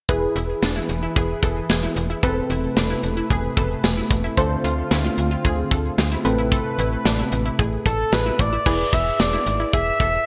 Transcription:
0.09 fm bass E1, analog synth pad E3 E4 G#4 B4, synth keys E4 G#4 B4, synth arpeggio sound G#4, kick, closed hi-hat
0.36 fm bass E1, synth arpeggio sound E4, closed hi-hat
0.62 fm bass E1, synth arpeggio sound D4, snare, closed hi-hat
0.76 synth arpeggio sound E4
0.89 fm bass E1, closed hi-hat
1.03 synth arpeggio sound E4
1.16 fm bass E1, synth arpeggio sound G#4, kick, closed hi-hat
1.43 fm bass E1, synth arpeggio sound A4, kick, closed hi-hat
1.69 fm bass E1, synth arpeggio sound G#4, snare, closed hi-hat
1.83 synth arpeggio sound E4
1.96 fm bass E1, closed hi-hat
2.10 synth arpeggio sound E4
2.23 fm bass E1, analog synth pad C3 A3 B4, synth keys C4 A4 B4, synth arpeggio sound A4, kick, closed hi-hat
2.50 fm bass E1, synth arpeggio sound E4, closed hi-hat
2.77 fm bass E1, synth arpeggio sound D4, snare, closed hi-hat
2.90 synth arpeggio sound E4
3.03 fm bass E1, closed hi-hat
3.17 synth arpeggio sound E4
3.30 fm bass E1, synth arpeggio sound G#4, kick, closed hi-hat
3.57 fm bass E1, synth arpeggio sound A4, kick, closed hi-hat
3.84 fm bass E1, synth arpeggio sound G#4, snare, closed hi-hat
3.97 synth arpeggio sound E4
4.11 fm bass E1, kick, closed hi-hat
4.24 synth arpeggio sound E4
4.37 fm bass D2, analog synth pad D3 C4 F4, synth keys D4 F4 C5, synth arpeggio sound A4, kick, closed hi-hat
4.64 fm bass D2, synth arpeggio sound F4, closed hi-hat
4.91 fm bass D2, synth arpeggio sound E4, snare, closed hi-hat
5.04 synth arpeggio sound F4
5.18 fm bass D2, closed hi-hat
5.31 synth arpeggio sound F4
5.45 fm bass D2, synth arpeggio sound G#4, kick, closed hi-hat
5.71 fm bass D2, synth arpeggio sound A4, kick, closed hi-hat
5.98 fm bass D2, synth arpeggio sound G#4, snare, closed hi-hat
6.12 synth arpeggio sound E4
6.25 fm bass A1, analog synth pad C3 A3 B4, synth keys C4 A4 B4, closed hi-hat
6.38 synth arpeggio sound E4
6.52 synth arpeggio sound A4, kick, closed hi-hat
6.79 fm bass A1, synth arpeggio sound E4, closed hi-hat
7.05 fm bass A1, synth arpeggio sound D4, snare, closed hi-hat
7.19 synth arpeggio sound E4
7.32 fm bass A1, closed hi-hat
7.46 synth arpeggio sound E4
7.59 fm bass A1, synth arpeggio sound G#4, kick, closed hi-hat
7.86 fm bass A1, analog synth lead A4, synth arpeggio sound A4, kick, closed hi-hat
8.12 fm bass A1, synth arpeggio sound G#4, analog synth lead B4, snare, closed hi-hat
8.26 synth arpeggio sound E4
8.39 fm bass A1, analog synth lead D5, kick, closed hi-hat
8.53 synth arpeggio sound E4
8.66 fm bass E1, synth keys E4 G#4 B4, synth arpeggio sound G#4, kick, crash
8.93 fm bass E1, synth arpeggio sound E4, analog synth lead E5, kick, closed hi-hat
9.20 fm bass E1, synth arpeggio sound D4, analog synth lead D5, snare, closed hi-hat
9.33 synth arpeggio sound E4
9.46 fm bass G#1, closed hi-hat
9.60 synth arpeggio sound E4
9.73 fm bass E1, synth arpeggio sound G#4, analog synth lead E5, kick, closed hi-hat
10.00 fm bass E1, synth arpeggio sound A4, analog synth lead E5, kick, closed hi-hat

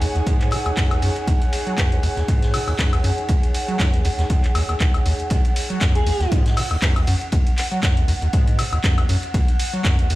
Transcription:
Already playing: analog synth pad D#4 G#4 C#5 G#5, ambient pad F#5
0.01 acid bass D#2, open hi-hat, ride
0.15 acid bass D#2, closed hi-hat
0.26 acid bass G#2, kick, closed hi-hat, ride
0.40 clap, closed hi-hat, ride
0.51 acid bass D#3, open hi-hat, ride, high woodblock
0.66 acid bass D#2, closed hi-hat, high woodblock
0.76 acid bass F#2, kick, snare, clap, closed hi-hat, ride
0.91 acid bass D#2, closed hi-hat, high woodblock
1.02 acid bass F#2, open hi-hat, ride
1.16 closed hi-hat, ride
1.27 acid bass D#2, kick, closed hi-hat, ride
1.42 closed hi-hat
1.52 open hi-hat, ride
1.67 acid bass F#3, closed hi-hat
1.78 acid bass F#2, kick, snare, clap, closed hi-hat, ride
1.92 acid bass D#2, closed hi-hat
2.03 acid bass D#2, open hi-hat, ride
2.17 acid bass D#2, snare, closed hi-hat
2.28 acid bass G#2, kick, closed hi-hat, ride
2.42 snare, closed hi-hat
2.54 acid bass D#3, open hi-hat, high woodblock
2.67 acid bass D#2, closed hi-hat, high woodblock
2.78 acid bass F#2, kick, snare, clap, closed hi-hat, ride
2.93 acid bass D#2, closed hi-hat, high woodblock
3.04 acid bass F#2, open hi-hat, ride
3.18 closed hi-hat
3.28 acid bass D#2, kick, closed hi-hat, ride
3.43 closed hi-hat
3.54 open hi-hat, ride
3.68 acid bass F#3, closed hi-hat
3.79 acid bass F#2, kick, snare, clap, closed hi-hat, ride
3.93 acid bass D#2, closed hi-hat
4.05 acid bass D#2, open hi-hat, ride
4.19 acid bass D#2, snare, closed hi-hat
4.30 acid bass G#2, kick, closed hi-hat, ride
4.43 clap, closed hi-hat, ride
4.55 acid bass D#2, open hi-hat, ride, high woodblock
4.69 acid bass D#2, closed hi-hat, high woodblock
4.80 acid bass D#2, kick, clap, closed hi-hat, ride
4.94 acid bass D#2, closed hi-hat, high woodblock
5.05 acid bass D#2, open hi-hat, ride
5.20 closed hi-hat
5.30 acid bass D#2, ambient pad F#5, kick, closed hi-hat, ride
5.45 closed hi-hat
5.56 open hi-hat, ride
5.70 acid bass F#3, closed hi-hat
5.81 acid bass F#2, kick, snare, clap, closed hi-hat, ride
5.95 acid bass D#2, digital synth lead G#4, closed hi-hat
6.06 acid bass D#2, open hi-hat, ride
6.20 acid bass D#2, snare, closed hi-hat
6.32 acid bass G#2, kick, closed hi-hat, ride
6.46 snare, closed hi-hat
6.56 acid bass D#3, open hi-hat, high woodblock
6.71 acid bass D#2, closed hi-hat, high woodblock
6.82 acid bass F#2, kick, snare, clap, closed hi-hat, ride
6.96 acid bass D#2, closed hi-hat, high woodblock
7.07 acid bass F#2, open hi-hat, ride
7.21 closed hi-hat
7.32 acid bass D#2, kick, closed hi-hat, ride
7.47 closed hi-hat
7.57 clap, open hi-hat, ride
7.72 acid bass F#3, closed hi-hat
7.83 acid bass F#2, kick, snare, clap, closed hi-hat, ride
7.97 acid bass D#2, closed hi-hat
8.08 acid bass D#2, open hi-hat, ride
8.22 acid bass D#2, closed hi-hat
8.33 acid bass G#2, kick, closed hi-hat, ride
8.47 closed hi-hat, ride
8.58 acid bass D#3, open hi-hat, ride, high woodblock
8.72 acid bass D#2, closed hi-hat, high woodblock
8.84 acid bass F#2, kick, snare, clap, closed hi-hat, ride
8.98 acid bass D#2, closed hi-hat, high woodblock
9.09 acid bass F#2, open hi-hat, ride
9.23 closed hi-hat, ride
9.34 acid bass D#2, kick, closed hi-hat, ride
9.48 closed hi-hat
9.59 open hi-hat, ride
9.73 acid bass F#3, closed hi-hat
9.84 acid bass F#2, kick, snare, clap, closed hi-hat, ride
9.99 acid bass D#2, closed hi-hat
10.10 acid bass D#2, open hi-hat, ride

